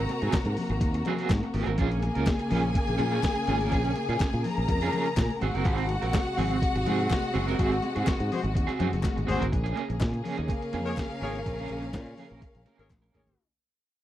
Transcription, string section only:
0, 0, Header, 1, 2, 480
1, 0, Start_track
1, 0, Key_signature, -5, "minor"
1, 0, Tempo, 483481
1, 1771, Time_signature, 4, 2, 24, 8
1, 13938, End_track
2, 0, Start_track
2, 0, Title_t, "String section"
2, 0, Program_c, 0, 48
2, 0, Note_on_c, 0, 48, 91
2, 0, Note_on_c, 0, 58, 86
2, 0, Note_on_c, 0, 66, 91
2, 1728, Note_off_c, 0, 66, 0
2, 1729, Note_off_c, 0, 48, 0
2, 1757, Note_on_c, 0, 49, 81
2, 1757, Note_on_c, 0, 68, 95
2, 5330, Note_off_c, 0, 49, 0
2, 5330, Note_off_c, 0, 68, 0
2, 5332, Note_off_c, 0, 58, 0
2, 5366, Note_on_c, 0, 56, 83
2, 5367, Note_on_c, 0, 48, 86
2, 5372, Note_on_c, 0, 66, 100
2, 9408, Note_off_c, 0, 48, 0
2, 9408, Note_off_c, 0, 56, 0
2, 9411, Note_off_c, 0, 66, 0
2, 9445, Note_on_c, 0, 68, 92
2, 9450, Note_on_c, 0, 49, 83
2, 9455, Note_on_c, 0, 58, 76
2, 13247, Note_off_c, 0, 68, 0
2, 13250, Note_off_c, 0, 49, 0
2, 13253, Note_off_c, 0, 58, 0
2, 13938, End_track
0, 0, End_of_file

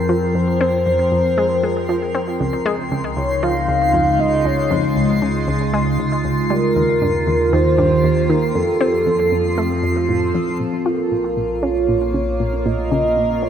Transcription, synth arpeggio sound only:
0, 0, Header, 1, 2, 480
1, 0, Start_track
1, 0, Key_signature, -4, "minor"
1, 0, Tempo, 512821
1, 326, Time_signature, 4, 2, 24, 8
1, 12629, End_track
2, 0, Start_track
2, 0, Title_t, "Synth arpeggio sound"
2, 0, Program_c, 0, 84
2, 85, Note_on_c, 0, 53, 74
2, 173, Note_off_c, 0, 53, 0
2, 326, Note_on_c, 0, 41, 77
2, 472, Note_off_c, 0, 41, 0
2, 568, Note_on_c, 0, 60, 94
2, 654, Note_off_c, 0, 60, 0
2, 807, Note_on_c, 0, 41, 77
2, 952, Note_off_c, 0, 41, 0
2, 1047, Note_on_c, 0, 41, 71
2, 1134, Note_off_c, 0, 41, 0
2, 1288, Note_on_c, 0, 56, 81
2, 1374, Note_off_c, 0, 56, 0
2, 1529, Note_on_c, 0, 56, 75
2, 1673, Note_off_c, 0, 56, 0
2, 1769, Note_on_c, 0, 53, 72
2, 1986, Note_off_c, 0, 53, 0
2, 2009, Note_on_c, 0, 60, 74
2, 2153, Note_off_c, 0, 60, 0
2, 2248, Note_on_c, 0, 37, 75
2, 2393, Note_off_c, 0, 37, 0
2, 2487, Note_on_c, 0, 56, 99
2, 2574, Note_off_c, 0, 56, 0
2, 2729, Note_on_c, 0, 37, 76
2, 2873, Note_off_c, 0, 37, 0
2, 2967, Note_on_c, 0, 37, 73
2, 3054, Note_off_c, 0, 37, 0
2, 3209, Note_on_c, 0, 53, 79
2, 3295, Note_off_c, 0, 53, 0
2, 3446, Note_on_c, 0, 37, 74
2, 3533, Note_off_c, 0, 37, 0
2, 3684, Note_on_c, 0, 41, 72
2, 3830, Note_off_c, 0, 41, 0
2, 3924, Note_on_c, 0, 37, 71
2, 4070, Note_off_c, 0, 37, 0
2, 4166, Note_on_c, 0, 37, 96
2, 4384, Note_off_c, 0, 37, 0
2, 4407, Note_on_c, 0, 41, 97
2, 4552, Note_off_c, 0, 41, 0
2, 4645, Note_on_c, 0, 37, 71
2, 4791, Note_off_c, 0, 37, 0
2, 4887, Note_on_c, 0, 49, 75
2, 4974, Note_off_c, 0, 49, 0
2, 5128, Note_on_c, 0, 37, 81
2, 5272, Note_off_c, 0, 37, 0
2, 5368, Note_on_c, 0, 56, 91
2, 5454, Note_off_c, 0, 56, 0
2, 5607, Note_on_c, 0, 37, 72
2, 5752, Note_off_c, 0, 37, 0
2, 5847, Note_on_c, 0, 37, 74
2, 5934, Note_off_c, 0, 37, 0
2, 6087, Note_on_c, 0, 55, 78
2, 6174, Note_off_c, 0, 55, 0
2, 6330, Note_on_c, 0, 39, 75
2, 6415, Note_off_c, 0, 39, 0
2, 6569, Note_on_c, 0, 43, 77
2, 6713, Note_off_c, 0, 43, 0
2, 6807, Note_on_c, 0, 39, 70
2, 6952, Note_off_c, 0, 39, 0
2, 7047, Note_on_c, 0, 39, 98
2, 7265, Note_off_c, 0, 39, 0
2, 7284, Note_on_c, 0, 43, 92
2, 7431, Note_off_c, 0, 43, 0
2, 7524, Note_on_c, 0, 39, 73
2, 7671, Note_off_c, 0, 39, 0
2, 7766, Note_on_c, 0, 51, 75
2, 7853, Note_off_c, 0, 51, 0
2, 8004, Note_on_c, 0, 41, 80
2, 8151, Note_off_c, 0, 41, 0
2, 8243, Note_on_c, 0, 60, 97
2, 8332, Note_off_c, 0, 60, 0
2, 8484, Note_on_c, 0, 41, 76
2, 8631, Note_off_c, 0, 41, 0
2, 8724, Note_on_c, 0, 41, 74
2, 8812, Note_off_c, 0, 41, 0
2, 8964, Note_on_c, 0, 57, 81
2, 9052, Note_off_c, 0, 57, 0
2, 9205, Note_on_c, 0, 41, 72
2, 9293, Note_off_c, 0, 41, 0
2, 9443, Note_on_c, 0, 45, 69
2, 9590, Note_off_c, 0, 45, 0
2, 9683, Note_on_c, 0, 41, 76
2, 9830, Note_off_c, 0, 41, 0
2, 9921, Note_on_c, 0, 46, 79
2, 10069, Note_off_c, 0, 46, 0
2, 10163, Note_on_c, 0, 65, 96
2, 10252, Note_off_c, 0, 65, 0
2, 10406, Note_on_c, 0, 46, 74
2, 10551, Note_off_c, 0, 46, 0
2, 10642, Note_on_c, 0, 46, 77
2, 10731, Note_off_c, 0, 46, 0
2, 10883, Note_on_c, 0, 61, 83
2, 10972, Note_off_c, 0, 61, 0
2, 11125, Note_on_c, 0, 46, 78
2, 11213, Note_off_c, 0, 46, 0
2, 11363, Note_on_c, 0, 49, 73
2, 11510, Note_off_c, 0, 49, 0
2, 11605, Note_on_c, 0, 46, 74
2, 11751, Note_off_c, 0, 46, 0
2, 11847, Note_on_c, 0, 46, 98
2, 12065, Note_off_c, 0, 46, 0
2, 12087, Note_on_c, 0, 49, 95
2, 12232, Note_off_c, 0, 49, 0
2, 12327, Note_on_c, 0, 46, 79
2, 12472, Note_off_c, 0, 46, 0
2, 12566, Note_on_c, 0, 58, 77
2, 12629, Note_off_c, 0, 58, 0
2, 12629, End_track
0, 0, End_of_file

